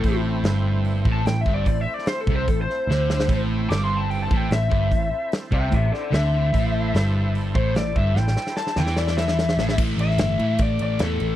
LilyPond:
<<
  \new Staff \with { instrumentName = "Lead electric guitar" } { \time 4/4 \key a \minor \tempo 4 = 148 a'8 r4. \tuplet 3/2 { r4 a''8 g''8 e''8 d''8 } | \tuplet 3/2 { d''8 e''8 d''8 c''8 a'8 c''8 a'8 c''4~ } c''4~ | c''8 r8 \tuplet 3/2 { d'''8 c'''8 a''8 g''8 a''8 g''8 } e''4~ | e''4 r8 <e'' g''>8 <g' e''>8 <a' d''>8 e''4~ |
e''2 r8 c''8 d''8 e''8 | g''4 a''8 g''8 d''8 e''4. | r8 e''4. d''8 d''8 a'4 | }
  \new Staff \with { instrumentName = "Tonewheel organ" } { \time 4/4 \key a \minor <a c' e' c''>1~ | <a c' e' c''>1 | <c' e' a' c''>1~ | <c' e' a' c''>1 |
<e' a' c''>1~ | <e' a' c''>1 | r1 | }
  \new Staff \with { instrumentName = "Distorted electric guitar" } { \clef bass \time 4/4 \key a \minor a,4 g,4. a,8 a,8 g,8 | a,8 r4 c8 a,8 r8 d4 | a,4 g,4. a,8 a,8 g,8 | a,8 r4 c8 a,8 r8 d4 |
a,4 g,4. a,8 a,8 g,8 | a,8 r4 e2 a,8 | <a, e a>4. <a, e a>4. <a, e a>4 | }
  \new Staff \with { instrumentName = "Picked electric bass" } { \clef bass \time 4/4 \key a \minor a,,4 g,,4. a,,8 a,,8 g,,8 | a,,8 r4 c,8 a,,8 r8 d,4 | a,,4 g,,4. a,,8 a,,8 g,,8 | a,,8 r4 c,8 a,,8 r8 d,4 |
a,,4 g,,4. a,,8 a,,8 g,,8 | a,,8 r4 e,2 a,,8 | a,,8 a,,8 g,,8 a,8 a,,8 a,,8 e,8 a,,8 | }
  \new DrumStaff \with { instrumentName = "Drums" } \drummode { \time 4/4 <hho bd>4 <hho sn>4 hho8 bd8 <hho sn>8 bd8 | <hho bd>8. sn16 <hho sn>8 bd8 <hho bd>8 sn8 sn8 sn16 sn16 | <hho bd>4 <hho sn>4 hho8 bd8 <hho sn>8 bd8 | <hho bd>4 <hho sn>8 bd8 <hho bd>8 sn8 <hho sn>4 |
<hho bd>4 <hho sn>4 hho8 bd8 <hho sn>8 bd8 | sn16 sn16 sn16 sn16 sn16 sn16 sn16 sn16 sn16 sn16 sn16 sn16 sn16 sn16 sn16 sn16 | <cymc bd>8 cymr16 sn16 <cymr sn>8 cymr8 <bd cymr>8 cymr8 <cymr sn>8 cymr8 | }
>>